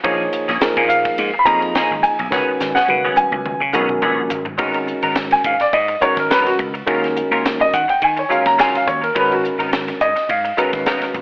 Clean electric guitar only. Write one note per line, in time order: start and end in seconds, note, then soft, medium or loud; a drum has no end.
0.04 0.22 F3 medium
0.04 0.22 A#3 medium
0.04 0.22 C#4 medium
0.04 0.22 G#4 loud
0.33 muted clean electric guitar stroke soft
0.48 0.61 A#3 soft
0.48 0.61 C#4 medium
0.48 0.61 G#4 medium
0.62 muted clean electric guitar stroke soft
0.77 0.89 F3 medium
0.77 0.89 A#3 medium
0.77 0.89 C#4 medium
0.77 0.89 G#4 medium
0.90 muted clean electric guitar stroke soft
1.06 muted clean electric guitar stroke soft
1.34 muted clean electric guitar stroke soft
1.47 1.62 F3 medium
1.47 1.62 A#3 medium
1.47 1.62 C#4 medium
1.47 1.62 G#4 medium
1.63 muted clean electric guitar stroke soft
1.76 1.93 F3 medium
1.76 1.94 A#3 medium
1.76 1.94 C#4 medium
1.76 1.94 G#4 medium
2.04 muted clean electric guitar stroke soft
2.19 muted clean electric guitar stroke soft
2.32 2.50 F#3 medium
2.32 2.50 B3 medium
2.32 2.51 C#4 medium
2.32 2.51 G#4 medium
2.60 muted clean electric guitar stroke soft
2.76 2.88 B3 soft
2.76 2.88 C#4 soft
2.76 2.88 G#4 soft
2.89 muted clean electric guitar stroke soft
3.05 3.17 F#3 medium
3.05 3.17 B3 medium
3.05 3.17 C#4 medium
3.05 3.17 G#4 medium
3.18 muted clean electric guitar stroke soft
3.33 muted clean electric guitar stroke soft
3.60 muted clean electric guitar stroke soft
3.73 3.89 F#3 medium
3.73 3.88 B3 medium
3.73 3.88 C#4 medium
3.73 3.88 G#4 medium
3.89 muted clean electric guitar stroke soft
4.02 4.20 F#3 medium
4.02 4.20 B3 medium
4.02 4.21 C#4 medium
4.02 4.21 G#4 medium
4.30 muted clean electric guitar stroke soft
4.45 muted clean electric guitar stroke soft
4.58 4.77 F#3 medium
4.58 4.77 B3 medium
4.58 4.77 D#4 medium
4.58 4.77 A#4 loud
4.87 muted clean electric guitar stroke soft
5.03 5.15 B3 soft
5.03 5.15 D#4 soft
5.03 5.15 A#4 medium
5.16 muted clean electric guitar stroke soft
5.31 muted clean electric guitar stroke soft
5.60 muted clean electric guitar stroke soft
5.88 muted clean electric guitar stroke soft
6.01 6.17 F#3 medium
6.01 6.16 B3 medium
6.01 6.16 D#4 medium
6.01 6.16 A#4 medium
6.17 muted clean electric guitar stroke soft
6.30 6.48 F#3 medium
6.30 6.49 B3 medium
6.30 6.49 D#4 medium
6.30 6.49 A#4 medium
6.59 muted clean electric guitar stroke soft
6.74 muted clean electric guitar stroke soft
6.87 7.05 F#3 medium
6.87 7.05 C#4 medium
6.87 7.05 F4 loud
6.87 7.06 A#4 medium
7.16 muted clean electric guitar stroke soft
7.32 7.44 C#4 soft
7.32 7.44 F4 soft
7.32 7.44 A#4 medium
7.45 muted clean electric guitar stroke soft
7.60 muted clean electric guitar stroke soft
7.88 muted clean electric guitar stroke soft
8.17 muted clean electric guitar stroke soft
8.29 8.45 F#3 medium
8.29 8.45 C#4 medium
8.29 8.44 F4 medium
8.29 8.44 A#4 medium
8.45 muted clean electric guitar stroke soft
8.58 8.76 F#3 medium
8.58 8.76 C#4 medium
8.58 8.77 F4 medium
8.58 8.77 A#4 medium
8.87 muted clean electric guitar stroke soft
9.02 muted clean electric guitar stroke soft
9.15 9.33 F#3 medium
9.15 9.33 B3 medium
9.15 9.34 D#4 medium
9.15 9.34 A#4 medium
9.44 muted clean electric guitar stroke soft
9.59 9.72 B3 soft
9.59 9.72 D#4 medium
9.59 9.72 A#4 medium
9.73 muted clean electric guitar stroke soft
9.88 muted clean electric guitar stroke soft
10.16 muted clean electric guitar stroke soft
10.44 muted clean electric guitar stroke soft
10.57 10.73 F#3 medium
10.57 10.72 B3 medium
10.57 10.72 D#4 medium
10.57 10.71 A#4 medium
10.72 muted clean electric guitar stroke soft
10.86 11.04 F#3 medium
10.86 11.05 B3 medium
10.86 11.04 D#4 medium
10.86 11.05 A#4 medium
11.15 muted clean electric guitar stroke soft